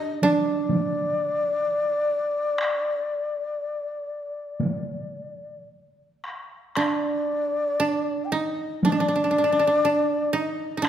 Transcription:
0.00 0.23 D4 medium
0.00 1.26 G4 medium
0.00 0.19 D#5 loud
0.22 5.63 D4 medium
0.22 5.63 D5 loud
0.22 taiko high soft
0.69 taiko high medium
2.58 taiko rim medium
4.60 taiko high medium
6.24 taiko rim soft
6.75 7.79 D4 medium
6.75 8.25 D5 loud
6.75 taiko rim medium
7.80 8.38 D4 medium
8.24 8.33 G5 medium
8.32 8.91 D#4 medium
8.32 8.84 D#5 medium
8.83 8.92 D4 medium
8.83 10.36 D5 loud
8.83 taiko high medium
8.92 9.00 D4 medium
9.00 9.08 D4 medium
9.08 9.15 D4 medium
9.16 9.24 D4 medium
9.24 9.30 D4 soft
9.31 9.38 D4 medium
9.38 9.44 D4 soft
9.44 9.52 D4 medium
9.52 9.59 D4 soft
9.59 9.67 D4 medium
9.67 9.84 D4 medium
9.85 10.39 D4 medium
10.33 10.77 D#4 medium
10.33 10.84 D#5 medium
10.77 10.88 D#4 medium
10.82 10.89 D4 medium
10.82 10.89 D5 medium
10.82 taiko rim medium

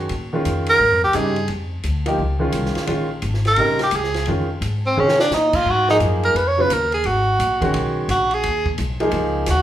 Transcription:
0.00 0.11 D#3 medium
0.00 0.11 G#3 soft
0.00 0.11 C#4 soft
0.00 0.12 F#4 medium
0.09 0.45 A#2 medium
0.09 ride medium
0.33 0.78 D#3 medium
0.33 0.78 G#3 medium
0.33 0.79 C#4 medium
0.33 0.79 F4 medium
0.45 0.79 F2 medium
0.45 hi-hat pedal medium
0.45 ride medium
0.66 1.01 A#4 loud
0.66 ride medium
0.80 0.92 G#2 medium
0.92 1.03 F2 medium
1.03 1.14 C#2 medium
1.03 1.17 G4 medium
1.13 1.48 G2 medium
1.13 1.34 C#3 medium
1.13 1.35 G3 medium
1.13 1.35 C4 medium
1.13 1.35 D#4 medium
1.13 1.50 G#4 medium
1.13 hi-hat pedal medium
1.13 ride medium
1.36 ride soft
1.48 1.83 F2 medium
1.48 ride medium
1.83 2.18 D2 medium
1.83 hi-hat pedal medium
1.83 ride medium
2.06 2.17 F3 medium
2.06 2.18 A#3 medium
2.06 2.18 D#4 medium
2.06 2.18 G4 medium
2.06 ride medium
2.18 2.52 C#2 medium
2.39 2.85 D#3 medium
2.39 2.85 G#3 medium
2.39 2.86 C#4 medium
2.39 2.86 F4 medium
2.52 2.74 C2 medium
2.52 hi-hat pedal medium
2.52 ride medium
2.65 snare soft
2.75 muted upright bass stroke soft
2.75 snare soft
2.75 ride soft
2.87 3.22 A#1 medium
2.87 3.08 D#3 medium
2.87 3.08 G#3 medium
2.87 3.09 C#4 medium
2.87 3.09 F4 medium
2.87 ride medium
3.22 3.57 G#1 medium
3.22 hi-hat pedal soft
3.22 ride medium
3.34 snare soft
3.45 3.79 A#4 medium
3.45 snare soft
3.45 ride soft
3.56 3.91 A#1 medium
3.56 3.78 C#3 medium
3.56 3.78 G3 medium
3.56 3.78 C4 medium
3.56 3.79 D#4 medium
3.56 ride medium
3.79 snare soft
3.79 ride soft
3.83 3.98 G4 medium
3.91 4.26 C#2 medium
3.91 hi-hat pedal medium
3.91 ride medium
3.96 4.29 G#4 medium
4.04 snare soft
4.14 snare soft
4.14 ride soft
4.25 4.61 F2 medium
4.25 4.48 D#3 medium
4.25 4.48 G#3 soft
4.25 4.48 C#4 medium
4.25 4.49 F4 medium
4.25 ride medium
4.61 4.95 G#2 medium
4.61 hi-hat pedal soft
4.61 ride medium
4.86 5.01 C4 medium
4.96 5.30 C3 medium
4.96 5.17 D#3 medium
4.96 5.17 G#3 medium
4.96 5.17 C#4 medium
4.96 5.20 C#4 medium
4.96 5.18 G#4 medium
5.08 snare medium
5.19 5.35 D4 medium
5.19 snare medium
5.31 5.65 A#2 medium
5.31 5.57 D#4 medium
5.31 snare medium
5.31 hi-hat pedal medium
5.53 5.71 F4 medium
5.53 kick medium
5.53 crash medium
5.66 5.99 G#2 medium
5.70 5.90 F#4 loud
5.88 6.33 F3 medium
5.88 6.34 A#3 medium
5.88 6.33 D#4 medium
5.88 5.97 D#4 medium
5.88 6.34 G#4 medium
5.88 snare soft
6.00 6.34 F#2 medium
6.00 hi-hat pedal soft
6.00 ride medium
6.23 6.38 A#4 loud
6.23 ride soft
6.34 6.69 F2 medium
6.34 6.49 B4 medium
6.34 ride medium
6.48 6.62 C#5 medium
6.57 6.69 C#3 medium
6.57 6.69 F#3 medium
6.57 6.69 B3 medium
6.57 6.70 F4 medium
6.57 6.74 B4 medium
6.69 7.04 D#2 medium
6.69 6.93 A#4 medium
6.69 hi-hat pedal medium
6.69 ride medium
6.92 7.07 G#4 medium
6.92 ride soft
7.04 7.39 G#1 medium
7.04 7.75 F#4 medium
7.04 ride medium
7.39 7.73 A#1 medium
7.39 hi-hat pedal soft
7.39 ride medium
7.61 8.06 D#3 medium
7.61 8.07 G#3 medium
7.61 8.07 C#4 medium
7.61 8.07 F#4 medium
7.61 kick medium
7.61 ride soft
7.74 8.08 B1 medium
7.74 ride medium
8.08 8.43 A#1 medium
8.08 8.35 F#4 medium
8.08 hi-hat pedal soft
8.08 ride medium
8.31 8.68 G#4 loud
8.31 ride soft
8.43 8.78 D#2 medium
8.43 ride medium
8.66 kick medium
8.78 9.12 B1 medium
8.78 hi-hat pedal medium
8.78 ride medium
9.00 9.45 F3 medium
9.00 9.45 A#3 medium
9.00 9.46 D#4 medium
9.00 9.46 G#4 medium
9.00 ride soft
9.11 9.47 C#2 medium
9.11 ride medium
9.46 9.62 D#2 medium
9.46 snare soft
9.46 hi-hat pedal medium
9.46 ride medium
9.51 9.62 F#4 medium

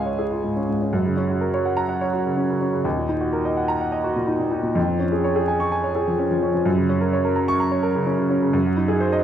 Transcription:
0.00 0.89 C#2 medium
0.00 0.44 G#2 soft
0.00 0.56 C#4 medium
0.00 0.31 F4 soft
0.00 0.19 G#4 medium
0.00 0.06 C#5 medium
0.00 0.95 F5 medium
0.00 0.95 G#5 medium
0.06 0.26 C#5 medium
0.19 0.39 G#4 medium
0.31 0.51 F4 medium
0.44 0.64 G#2 soft
0.56 0.76 C#4 soft
0.69 0.88 G#2 soft
0.81 0.93 C#4 soft
0.93 2.81 F#2 medium
1.05 1.24 C#3 medium
1.17 1.36 C#4 medium
1.30 1.48 F#4 medium
1.41 1.60 A#4 medium
1.54 1.72 C#5 medium
1.65 1.84 F#5 medium
1.77 1.96 A#5 medium
1.89 2.08 F#5 medium
2.01 2.20 C#5 medium
2.13 2.32 F#4 medium
2.26 2.44 C#3 medium
2.37 2.56 C#4 medium
2.49 2.68 C#3 medium
2.61 2.80 C#4 medium
2.73 2.85 C#3 medium
2.85 4.72 D#2 medium
2.97 3.16 A#2 soft
3.09 3.28 D#4 medium
3.21 3.40 F#4 medium
3.33 3.52 A#4 medium
3.45 3.64 D#5 medium
3.57 3.76 F#5 medium
3.68 3.87 A#5 medium
3.81 4.00 F#5 medium
3.92 4.11 D#5 medium
4.04 4.23 F#4 medium
4.16 4.35 A#2 medium
4.27 4.47 D#4 medium
4.39 4.59 A#2 medium
4.51 4.71 D#4 medium
4.63 4.76 A#2 medium
4.75 6.62 F2 medium
4.87 5.07 F3 medium
4.99 5.19 C#4 medium
5.12 5.31 G#4 medium
5.24 5.43 C#5 medium
5.36 5.55 G#4 medium
5.48 5.67 G#5 medium
5.60 5.79 C#6 medium
5.72 5.91 G#5 medium
5.84 6.03 C#5 medium
5.95 6.14 G#4 medium
6.08 6.27 F3 medium
6.19 6.38 C#4 medium
6.31 6.50 F3 medium
6.43 6.62 C#4 medium
6.54 6.66 F3 medium
6.66 8.49 F#2 medium
6.77 6.97 C#3 medium
6.89 7.09 C#4 medium
7.01 7.20 A#4 medium
7.13 7.32 C#5 medium
7.25 7.44 A#4 medium
7.36 7.55 A#5 medium
7.48 7.67 C#6 loud
7.60 7.79 A#5 medium
7.71 7.91 C#5 medium
7.83 8.02 A#4 medium
7.95 8.14 C#3 medium
8.06 8.26 C#4 medium
8.18 8.37 C#3 medium
8.30 8.49 C#4 medium
8.41 8.54 C#3 medium
8.53 9.24 F#2 medium
8.66 8.84 F#3 medium
8.77 8.96 D#4 medium
8.88 9.08 G#4 medium
9.00 9.20 C5 medium
9.13 9.24 D#5 medium

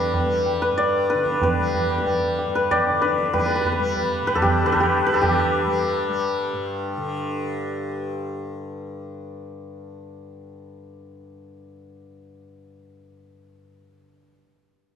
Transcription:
0.00 0.70 G2 medium
0.00 1.15 D3 medium
0.00 0.26 G3 medium
0.00 0.61 B4 medium
0.00 0.77 D5 medium
0.14 tabla tin medium
0.14 tabla ge medium
0.26 1.58 G3 medium
0.46 tabla tin medium
0.62 1.09 B4 medium
0.71 2.46 G2 medium
0.78 2.71 D5 loud
0.78 tabla tin medium
1.10 1.43 B4 medium
1.10 tabla te medium
1.15 2.90 D3 medium
1.15 tabla te medium
1.26 tabla ke medium
1.34 tabla te medium
1.41 2.55 B4 medium
1.41 tabla tin loud
1.41 tabla ge loud
1.58 2.02 G3 medium
1.74 tabla tin medium
1.74 tabla ge medium
1.90 tabla na medium
1.98 3.35 G3 medium
1.98 tabla ke medium
2.07 tabla tin medium
2.07 tabla ge medium
2.39 tabla tin medium
2.47 4.22 G2 medium
2.55 3.01 B4 medium
2.71 5.17 D5 loud
2.71 tabla na medium
2.71 tabla ge medium
2.87 4.62 D3 medium
2.87 tabla te medium
3.02 3.33 B4 loud
3.02 tabla te medium
3.10 tabla te medium
3.18 tabla ke medium
3.26 tabla te medium
3.33 3.79 G3 medium
3.33 3.39 B4 medium
3.33 tabla tin loud
3.33 tabla ge medium
3.39 3.45 B4 medium
3.46 3.50 B4 medium
3.50 3.55 B4 medium
3.55 3.61 B4 medium
3.61 3.66 B4 medium
3.61 tabla tin medium
3.61 tabla ge medium
3.66 3.72 B4 medium
3.72 4.27 B4 medium
3.79 5.07 G3 medium
3.97 tabla tin medium
3.97 tabla ge medium
4.22 6.53 G2 medium
4.27 4.65 B4 loud
4.27 tabla na medium
4.35 4.72 A4 loud
4.35 tabla tin medium
4.35 tabla ge medium
4.42 4.80 G4 medium
4.42 tabla na loud
4.42 tabla ge loud
4.63 5.22 D3 medium
4.63 5.06 B4 loud
4.68 tabla na medium
4.72 5.13 A4 loud
4.72 tabla tin medium
4.72 tabla ge medium
4.80 5.21 G4 medium
4.80 tabla na loud
4.80 tabla ge medium
5.07 5.66 G3 medium
5.07 7.81 B4 loud
5.07 tabla na medium
5.14 8.06 A4 medium
5.14 tabla tin medium
5.14 tabla ge medium
5.21 6.97 D3 medium
5.21 8.35 G4 medium
5.21 tabla na loud
5.21 tabla ge loud
5.66 6.09 G3 medium
6.09 12.63 G3 medium
6.53 13.68 G2 medium
6.97 14.12 D3 medium

